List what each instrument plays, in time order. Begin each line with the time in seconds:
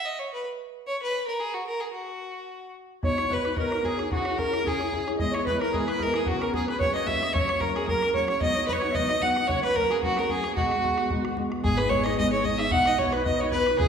0.05 fiddle D#5
0.19 fiddle C#5
0.34 fiddle B4
0.87 fiddle C#5
1.02 fiddle B4
1.27 fiddle A#4
1.40 fiddle G#4
1.54 fiddle F#4
1.67 fiddle A#4
1.80 fiddle G#4
1.93 fiddle F#4
3.02 steel-string acoustic guitar B3 D#4 F#4 C#5, accordion C#5, harp C#5, fiddle C#5, bodhran
3.16 steel-string acoustic guitar D#4 F#4 C#5, harp C#5, bodhran
3.25 bodhran
3.29 steel-string acoustic guitar B3 D#4 F#4 C#5, accordion B4, harp B4, fiddle B4, bodhran
3.38 bodhran
3.43 steel-string acoustic guitar D#4 F#4 C#5, accordion B4, harp B4, bodhran
3.56 steel-string acoustic guitar B3 D#4 F#4 C#5, accordion A#4, harp A#4, fiddle A#4, bodhran
3.71 steel-string acoustic guitar D#4 F#4 C#5, bodhran
3.83 steel-string acoustic guitar B3 D#4 F#4 C#5, harp G#4, accordion G#4, fiddle G#4, bodhran
3.98 steel-string acoustic guitar D#4 F#4 C#5, bodhran
4.10 steel-string acoustic guitar C#4 E4 G#4 C#5, accordion F#4, harp F#4, fiddle F#4, bodhran
4.25 steel-string acoustic guitar E4 G#4 C#5, bodhran
4.32 bodhran
4.38 steel-string acoustic guitar C#4 E4 G#4 C#5, fiddle A#4, accordion A#4, harp A#4, bodhran
4.46 bodhran
4.51 steel-string acoustic guitar E4 G#4 C#5, bodhran
4.57 accordion A#4
4.64 steel-string acoustic guitar C#4 E4 G#4 C#5, accordion G#4, harp G#4, fiddle G#4, bodhran
4.80 steel-string acoustic guitar E4 G#4 C#5, bodhran
4.92 steel-string acoustic guitar C#4 E4 G#4 C#5, bodhran
5.07 steel-string acoustic guitar E4 G#4 C#5, bodhran
5.18 steel-string acoustic guitar E3 G#3 B3 E4, accordion D#5, harp D#5, fiddle D#5, bodhran
5.31 steel-string acoustic guitar B3 E4, harp C#5, accordion C#5, fiddle C#5, bodhran
5.36 steel-string acoustic guitar G#3
5.40 accordion B4, bodhran
5.45 steel-string acoustic guitar E3 G#3, harp B4, fiddle B4, bodhran
5.49 steel-string acoustic guitar B3 E4
5.54 harp A#4, bodhran
5.58 steel-string acoustic guitar B3 E4, accordion A#4, fiddle A#4, bodhran
5.63 steel-string acoustic guitar G#3
5.72 steel-string acoustic guitar E3 G#3 B3 E4, accordion G#4, harp G#4, fiddle G#4, bodhran
5.85 steel-string acoustic guitar B3 E4, harp B4, accordion B4, fiddle B4, bodhran
5.90 steel-string acoustic guitar G#3
5.96 harp A#4, accordion A#4 B4, bodhran
6.00 steel-string acoustic guitar E3 G#3 B3 E4, fiddle A#4
6.12 steel-string acoustic guitar E4, accordion G#4, harp G#4, fiddle G#4, bodhran
6.17 steel-string acoustic guitar G#3
6.24 steel-string acoustic guitar F#2 C#3 F#3 B3, accordion F#4, harp F#4, fiddle F#4, bodhran
6.29 steel-string acoustic guitar C#4 F#4
6.37 harp A#4, accordion A#4
6.41 steel-string acoustic guitar F#3 B3 C#4, fiddle A#4, bodhran
6.48 harp G#4, bodhran
6.53 steel-string acoustic guitar F#3 B3 C#4 F#4, accordion G#4, fiddle G#4, bodhran
6.61 bodhran
6.66 steel-string acoustic guitar B3 C#4 F#4, harp B4, accordion B4, fiddle B4, bodhran
6.70 steel-string acoustic guitar F#3
6.79 steel-string acoustic guitar F#3 A#3 C#4 F#4, harp C#5, fiddle C#5, accordion C#5, bodhran
6.94 steel-string acoustic guitar A#3 C#4 F#4, harp D#5, fiddle D#5, bodhran
7.04 steel-string acoustic guitar F#3 A#3 C#4 F#4, harp E5, fiddle E5, accordion F#5, bodhran
7.09 accordion E5
7.20 steel-string acoustic guitar A#3 C#4 F#4, accordion D#5, bodhran
7.33 steel-string acoustic guitar F#3 A#3 C#4 F#4, harp C#5, fiddle C#5, accordion C#5, bodhran
7.47 steel-string acoustic guitar A#3 C#4 F#4, bodhran
7.55 bodhran
7.60 steel-string acoustic guitar F#3 A#3 C#4 F#4, fiddle A#4, accordion A#4, harp A#4, bodhran
7.68 bodhran
7.73 steel-string acoustic guitar A#3 C#4 F#4, harp G#4, fiddle G#4, accordion G#4, bodhran
7.87 steel-string acoustic guitar F#3 A#3 C#4 F#4, harp A#4, fiddle A#4, accordion A#4, bodhran
8.02 steel-string acoustic guitar A#3 C#4 F#4, bodhran
8.14 steel-string acoustic guitar F#3 A#3 C#4 F#4, harp C#5, fiddle C#5, accordion C#5, bodhran
8.28 steel-string acoustic guitar A#3 C#4 F#4, harp C#5, fiddle C#5, accordion C#5, bodhran
8.40 steel-string acoustic guitar G#2 D#3 F#3 B3 D#4 F#4, harp D#5, accordion D#5, fiddle D#5, bodhran
8.54 steel-string acoustic guitar F#3 B3 F#4, harp C#5
8.62 bodhran
8.67 steel-string acoustic guitar F#3 B3 D#4 F#4, harp B4, fiddle B4, accordion B4, bodhran
8.73 fiddle C#5, harp C#5, accordion C#5, bodhran
8.82 steel-string acoustic guitar F#3 B3 D#4 F#4, bodhran
8.90 accordion E5
8.94 steel-string acoustic guitar G#2 D#3 F#3 B3 D#4 F#4, harp D#5, fiddle D#5, accordion D#5, bodhran
9.09 steel-string acoustic guitar F#3 B3 D#4 F#4, bodhran
9.20 steel-string acoustic guitar F#3 B3 D#4 F#4, fiddle F#5, harp F#5, accordion F#5, bodhran
9.36 steel-string acoustic guitar F#3 B3 D#4, bodhran
9.47 steel-string acoustic guitar F#3 A#3 C#4 F#4, fiddle C#5, harp C#5, accordion C#5, bodhran
9.62 steel-string acoustic guitar A#3 C#4 F#4, fiddle B4, harp B4, accordion B4, bodhran
9.70 bodhran
9.75 steel-string acoustic guitar F#3 A#3 C#4 F#4, harp A#4, fiddle A#4, accordion A#4, bodhran
9.84 bodhran
9.90 steel-string acoustic guitar A#3 C#4 F#4, harp G#4, fiddle G#4, accordion G#4, bodhran
10.03 steel-string acoustic guitar F#3 A#3 C#4 F#4, fiddle F#4, accordion F#4, harp F#4, bodhran
10.16 steel-string acoustic guitar A#3 C#4 F#4, fiddle A#4, bodhran
10.28 steel-string acoustic guitar F#3 A#3 C#4 F#4, harp G#4, fiddle G#4, accordion G#4, bodhran
10.43 steel-string acoustic guitar A#3 C#4 F#4, bodhran
10.55 steel-string acoustic guitar B2 D#3 G#3 B3 F#4, harp F#4, fiddle F#4, accordion F#4, bodhran
10.71 steel-string acoustic guitar G#3 B3 F#4, bodhran
10.79 bodhran
10.83 steel-string acoustic guitar D#3 G#3 B3 F#4, bodhran
10.92 bodhran
10.98 steel-string acoustic guitar G#3 B3 F#4, bodhran
11.10 steel-string acoustic guitar B2 D#3 G#3 B3 F#4, bodhran
11.24 steel-string acoustic guitar G#3 B3 F#4, bodhran
11.37 steel-string acoustic guitar D#3 G#3 B3 F#4, bodhran
11.51 steel-string acoustic guitar G#3 B3 F#4, bodhran
11.63 upright bass G#1, steel-string acoustic guitar G#3 B3 D#4 G#4, harp G#4, fiddle G#4, accordion G#4, bodhran
11.77 steel-string acoustic guitar B3 D#4 G#4, harp B4, fiddle B4, bodhran
11.89 steel-string acoustic guitar G#3 B3 D#4, fiddle C#5, harp C#5, accordion C#5, bodhran
12.03 steel-string acoustic guitar B3 D#4 G#4, harp D#5, accordion D#5, fiddle D#5, bodhran
12.17 steel-string acoustic guitar G#3 B3 D#4 G#4, accordion D#5, fiddle D#5, harp D#5, bodhran
12.28 steel-string acoustic guitar G#4, accordion B4 C#5
12.33 steel-string acoustic guitar B3 D#4, fiddle C#5
12.44 steel-string acoustic guitar G#3 B3 D#4 G#4, fiddle D#5, accordion D#5, harp D#5, bodhran
12.58 steel-string acoustic guitar B3 D#4 G#4, fiddle E5, harp E5, accordion E5, bodhran
12.71 upright bass B1, steel-string acoustic guitar B3 D#4 F#4 B4, fiddle F#5, harp F#5, accordion F#5, bodhran
12.86 steel-string acoustic guitar F#4 B4, harp D#5, fiddle D#5, bodhran
12.98 steel-string acoustic guitar B3 D#4 F#4 B4, fiddle C#5, harp C#5, accordion C#5, bodhran
13.12 steel-string acoustic guitar D#4 F#4 B4, harp B4, fiddle B4, accordion B4, bodhran
13.24 steel-string acoustic guitar B3 D#4 F#4, harp D#5, fiddle D#5, accordion D#5, bodhran
13.28 steel-string acoustic guitar B4
13.39 steel-string acoustic guitar D#4 F#4 B4, harp C#5, fiddle C#5, accordion C#5
13.51 steel-string acoustic guitar B3 D#4, fiddle B4, harp B4, accordion B4, bodhran
13.56 steel-string acoustic guitar F#4
13.67 steel-string acoustic guitar D#4 F#4 B4, bodhran
13.77 upright bass C#2, steel-string acoustic guitar C#4 E4 G#4, harp G#4, fiddle G#4, accordion G#4, bodhran
13.81 steel-string acoustic guitar C#5